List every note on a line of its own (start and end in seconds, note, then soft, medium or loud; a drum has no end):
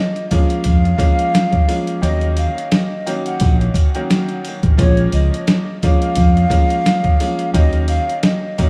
0.00 0.26 D#5 medium
0.16 closed hi-hat soft
0.29 0.95 F3 medium
0.29 0.95 G#3 medium
0.29 0.95 A#3 medium
0.29 0.95 C#4 loud
0.29 1.98 F5 loud
0.29 kick medium
0.29 closed hi-hat medium
0.29 sleigh bells medium
0.50 closed hi-hat medium
0.64 0.92 F2 medium
0.64 kick medium
0.64 closed hi-hat loud
0.64 sleigh bells medium
0.85 closed hi-hat soft
0.98 1.63 F3 medium
0.98 1.63 G#3 medium
0.98 1.63 A#3 medium
0.98 1.63 C#4 loud
0.98 kick loud
0.98 closed hi-hat medium
0.98 sleigh bells medium
1.19 closed hi-hat medium
1.34 snare loud
1.34 closed hi-hat medium
1.34 sleigh bells soft
1.52 kick medium
1.52 closed hi-hat soft
1.68 2.00 F3 medium
1.68 2.00 G#3 medium
1.68 2.00 A#3 medium
1.68 2.01 C#4 medium
1.68 closed hi-hat medium
1.68 sleigh bells medium
1.87 closed hi-hat medium
2.01 2.45 D#2 loud
2.01 2.83 D#3 medium
2.01 2.83 F#3 medium
2.01 2.83 A#3 medium
2.01 2.84 C#4 loud
2.01 2.33 D#5 loud
2.01 closed hi-hat medium
2.01 sleigh bells medium
2.21 closed hi-hat soft
2.37 2.69 F5 medium
2.37 closed hi-hat medium
2.37 sleigh bells medium
2.58 closed hi-hat medium
2.71 3.23 D#5 medium
2.71 snare loud
2.71 closed hi-hat medium
2.71 sleigh bells soft
3.06 3.87 D#3 loud
3.06 3.87 F#3 medium
3.06 3.88 A#3 medium
3.06 3.88 C#4 loud
3.06 closed hi-hat medium
3.06 sleigh bells medium
3.26 3.57 F#5 medium
3.26 closed hi-hat medium
3.40 3.68 A#1 loud
3.40 kick medium
3.40 closed hi-hat loud
3.40 sleigh bells medium
3.61 closed hi-hat soft
3.74 kick loud
3.74 closed hi-hat medium
3.74 sleigh bells medium
3.95 4.73 D#3 medium
3.95 4.73 F#3 medium
3.95 4.73 A#3 medium
3.95 4.73 C#4 loud
3.95 closed hi-hat medium
4.10 snare loud
4.10 closed hi-hat medium
4.10 sleigh bells soft
4.29 closed hi-hat soft
4.45 closed hi-hat medium
4.45 sleigh bells medium
4.63 4.75 A1 loud
4.63 kick loud
4.63 closed hi-hat medium
4.77 5.06 A#1 loud
4.77 5.59 F3 loud
4.77 5.59 G#3 medium
4.77 5.59 A#3 medium
4.77 5.59 C#4 loud
4.77 5.10 C#5 loud
4.77 kick loud
4.77 closed hi-hat medium
4.77 sleigh bells medium
4.97 closed hi-hat soft
5.12 5.28 C#2 medium
5.12 5.78 D#5 medium
5.12 closed hi-hat medium
5.12 sleigh bells medium
5.34 closed hi-hat medium
5.47 snare loud
5.47 closed hi-hat medium
5.47 sleigh bells soft
5.82 6.47 F3 medium
5.82 6.47 G#3 medium
5.82 6.47 A#3 medium
5.82 6.47 C#4 loud
5.82 7.51 F5 loud
5.82 kick medium
5.82 closed hi-hat medium
5.82 sleigh bells medium
6.02 closed hi-hat medium
6.16 6.44 F2 loud
6.16 kick loud
6.16 closed hi-hat loud
6.16 sleigh bells medium
6.37 closed hi-hat soft
6.49 7.14 F3 medium
6.49 7.15 G#3 medium
6.49 7.15 A#3 medium
6.49 7.15 C#4 loud
6.49 kick loud
6.49 closed hi-hat medium
6.49 sleigh bells medium
6.70 closed hi-hat medium
6.86 snare loud
6.86 closed hi-hat medium
6.86 sleigh bells soft
7.04 kick medium
7.04 closed hi-hat soft
7.19 7.52 F3 medium
7.19 7.52 G#3 medium
7.19 7.52 A#3 medium
7.19 7.52 C#4 loud
7.19 closed hi-hat medium
7.19 sleigh bells medium
7.39 closed hi-hat medium
7.54 7.97 D#2 loud
7.54 8.35 D#3 medium
7.54 8.35 F#3 medium
7.54 8.35 A#3 medium
7.54 8.36 C#4 loud
7.54 7.86 D#5 loud
7.54 kick loud
7.54 closed hi-hat medium
7.54 sleigh bells medium
7.73 closed hi-hat soft
7.88 8.20 F5 medium
7.88 closed hi-hat medium
7.88 sleigh bells medium
8.10 closed hi-hat medium
8.23 8.70 D#5 medium
8.23 snare loud
8.23 closed hi-hat medium
8.23 sleigh bells soft
8.58 8.70 D#3 medium
8.58 8.70 F#3 medium
8.58 8.70 A#3 medium
8.58 8.70 C#4 loud
8.58 kick medium
8.58 closed hi-hat medium
8.58 sleigh bells medium